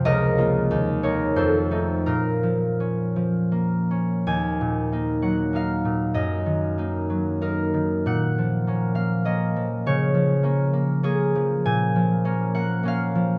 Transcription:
<<
  \new Staff \with { instrumentName = "Harp" } { \time 3/4 \key bes \minor \tempo 4 = 96 <bes' ees'' f''>4. <bes' des''>8 <a' c''>4 | <f' bes'>2. | \key ees \minor aes''4. ges''8 f''4 | ees''2 bes'4 |
ges''4. f''8 ees''4 | des''2 aes'4 | \key bes \minor aes''4. ges''8 f''4 | }
  \new Staff \with { instrumentName = "Harp" } { \time 3/4 \key bes \minor <des, f f'>8 <bes f'>8 ees,8 <bes ees'>8 f,8 <a ees'>8 | bes,8 f8 des'8 f8 bes8 des'8 | \key ees \minor ees,8 bes,8 <bes ees'>8 ges8 <bes ees'>8 bes,8 | ges,8 ees8 <bes ees'>8 ges8 <bes ees'>8 ees8 |
bes,8 f8 <bes des'>8 bes8 <bes des'>8 f8 | des8 f8 <bes des'>8 bes8 <bes des'>8 f8 | \key bes \minor bes,8 f8 <bes des'>8 bes8 <bes des'>8 f8 | }
>>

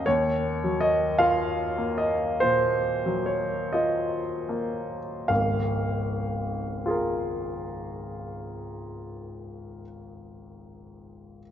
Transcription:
<<
  \new Staff \with { instrumentName = "Grand piano" } { \time 4/4 \key des \major \tempo 4 = 38 << { \tuplet 3/2 { des''4 ees''8 f''4 ees''8 c''4 des''8 } ees''4 | f''1 | } \\ { r1 | r4 <f' aes' bes'>2. | } >> }
  \new Staff \with { instrumentName = "Grand piano" } { \clef bass \time 4/4 \key des \major ees,8 ges8 f'8 bes8 bes,8 ges8 f'8 bes8 | <des,, aes,,>1 | }
>>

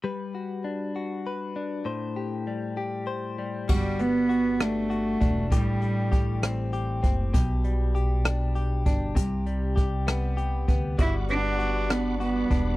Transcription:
<<
  \new Staff \with { instrumentName = "Tonewheel organ" } { \time 6/8 \key g \major \tempo 4. = 66 r2. | r2. | r2. | r2. |
r2. | r2. | <g fis'' b'' d'''>2. | }
  \new Staff \with { instrumentName = "Clean electric guitar" } { \time 6/8 \key g \major <g b'>8 fis'8 d'8 fis'8 b'8 d'8 | <a, c''>8 g'8 g8 g'8 c''8 g8 | <g fis'>8 b8 fis'8 d'8 fis'8 d'8 | <a, g'>8 g8 g'8 c'8 g'8 c'8 |
<b, g'>8 g8 g'8 d'8 g'8 d'8 | <c g'>8 g8 g'8 b8 g'8 b8 | <g fis'>8 b8 fis'8 d'8 fis'8 d'8 | }
  \new Staff \with { instrumentName = "Cello" } { \time 6/8 \key g \major r2. | r2. | g8 b4 a4. | g4. r4. |
r2. | r2. | e'8 d'4 b8 b4 | }
  \new Staff \with { instrumentName = "Upright bass" } { \clef bass \time 6/8 \key g \major r2. | r2. | g,,2~ g,,8 e,,8 | a,,2~ a,,8 fis,,8 |
b,,2~ b,,8 g,,8 | c,2~ c,8 d,8 | g,,2~ g,,8 e,,8 | }
  \new DrumStaff \with { instrumentName = "Drums" } \drummode { \time 6/8 r4. r4. | r4. r4. | <cymc bd>8 hh8 hh8 <hh ss>8 hh8 <hh bd>8 | <hh bd>8 hh8 <hh bd>8 <hh ss>8 hh8 <hh bd>8 |
<hh bd>8 hh8 hh8 <hh ss>8 hh8 <hh bd>8 | <hh bd>8 hh8 <hh bd>8 <hh ss>8 hh8 <hh bd>8 | <hh bd>8 hh8 hh8 <hh ss>8 hh8 <hh bd>8 | }
>>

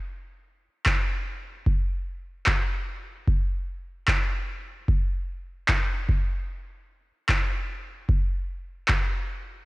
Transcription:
\new DrumStaff \with { instrumentName = "Drums" } \drummode { \time 4/4 \tempo 4 = 75 r4 <hc bd>4 bd4 <hc bd>4 | bd4 <hc bd>4 bd4 <hc bd>8 bd8 | r4 <hc bd>4 bd4 <hc bd>4 | }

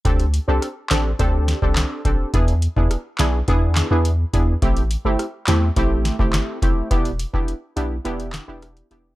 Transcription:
<<
  \new Staff \with { instrumentName = "Synth stab" } { \time 4/4 \key e \minor \tempo 4 = 105 <c' d' g' a'>16 r8 <c' d' g' a'>16 r8 <c' d' g' a'>16 r16 <c' d' g' a'>8. <c' d' g' a'>8. <c' d' g' a'>8 | <b d' e' gis'>16 r8 <b d' e' gis'>16 r8 <b d' e' gis'>16 r16 <b d' e' gis'>8. <b d' e' gis'>16 r8 <b d' e' gis'>16 r16 | <a c' e' g'>16 r8 <a c' e' g'>16 r8 <a c' e' g'>16 r16 <a c' e' g'>8. <a c' e' g'>8. <a c' e' g'>8 | <b d' e' g'>16 r8 <b d' e' g'>16 r8 <b d' e' g'>16 r16 <b d' e' g'>8. <b d' e' g'>8. <b d' e' g'>8 | }
  \new Staff \with { instrumentName = "Sub bass" } { \clef bass \time 4/4 \key e \minor d,8. c,16 r8 a,,8 d,8. c,8 r16 a,,16 r16 | e,8. e,16 r8 b,,8 e,8. e,8. e,8 | a,,8. g,,16 r8 e,8 a,,8. g,,8 r16 fis,,16 r16 | e,,8. e,,16 r8 b,,8 e,,8. e,,8. e,,8 | }
  \new DrumStaff \with { instrumentName = "Drums" } \drummode { \time 4/4 <hh bd>16 hh16 hh8 <hh ss>8 <hc hh sn>8 <hh bd>8 <hh sn>16 bd16 <hc hh sn>8 <hh bd>8 | <hh bd>16 hh16 hh16 bd16 <hh ss>8 <hc hh sn>8 <hh bd>8 <hc hh sn>8 hh8 <hh bd>8 | <hh bd>16 hh16 hh8 <hh ss>8 <hc hh sn>8 <hh bd>8 <hh sn>16 bd16 <hc hh sn>8 <hh bd>8 | <hh bd>16 hh16 hh16 bd16 hh8 hh8 hh16 hh16 <hc hh sn>8 <hh ss>16 hh16 hh8 | }
>>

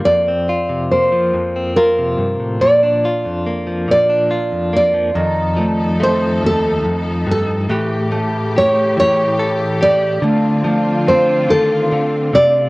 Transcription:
<<
  \new Staff \with { instrumentName = "Nylon-string guitar" } { \time 6/8 \key f \mixolydian \tempo 4. = 47 d''4 c''4 bes'4 | d''4. d''4 d''8~ | d''4 c''8 a'4 a'8~ | a'4 cis''8 cis''4 d''8~ |
d''4 c''8 a'4 d''8 | }
  \new Staff \with { instrumentName = "String section" } { \time 6/8 \key f \mixolydian r2. | r2. | <f, f ees' a'>2. | <a, cis e g'>2. |
<c' d' f'>2. | }
  \new Staff \with { instrumentName = "Harp" } { \time 6/8 \key f \mixolydian r2. | r2. | ees8 a8 c'2 | e8 a2~ a8 |
a8 a8 c'2 | }
  \new Staff \with { instrumentName = "Clean electric guitar" } { \clef bass \time 6/8 \key f \mixolydian << { f'16 c'16 f'8 bes8. c'16 f'4~ | f'16 d'16 f'8 bes8. d'16 f'8 bes8 | r4 a2 | <a g'>4 g'4 a'8 g'8 |
r4 c'2 | } \\ { f,8. c8 f16 f,8. c16 g,16 a,16 | bes,8. f,8 f16 bes,8. f,8 f16 | f,8 f4 ees,8 f,8 g,8 | a,8 a4 e4. |
d8 f4 ees8 d8 c8 | } >> }
>>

